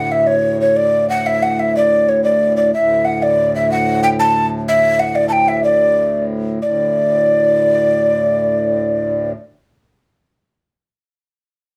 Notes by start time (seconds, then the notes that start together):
Already playing: D2 A2 F#5
0.12 E5
0.27 C#5
0.61 C#5
0.77 D5
1.09 F#5
1.26 E5
1.43 F#5
1.59 E5
1.76 D5
2.09 C#5
2.24 D5
2.57 D5
2.73 D2 A2 E5
3.05 F#5
3.23 D5
3.55 E5
3.71 F#5
4.03 G5
4.19 A5
4.68 E5
4.99 F#5
5.15 D5
5.29 G5 A5
5.48 E5
5.64 D5
6.60 D2 A2 D5